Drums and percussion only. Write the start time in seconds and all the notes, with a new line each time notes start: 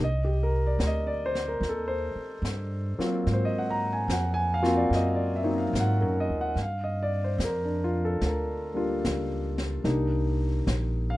0.80 snare, hi-hat pedal
1.35 snare
1.63 brush sweep, snare
2.45 snare, hi-hat pedal
3.00 snare
3.27 brush sweep, snare
4.10 snare, hi-hat pedal
4.64 snare
4.93 brush sweep, snare
5.75 snare, hi-hat pedal
6.57 brush sweep, snare
7.40 snare, hi-hat pedal
8.21 brush sweep, snare
9.05 snare, hi-hat pedal
9.58 snare
9.85 brush sweep, snare
10.67 snare, hi-hat pedal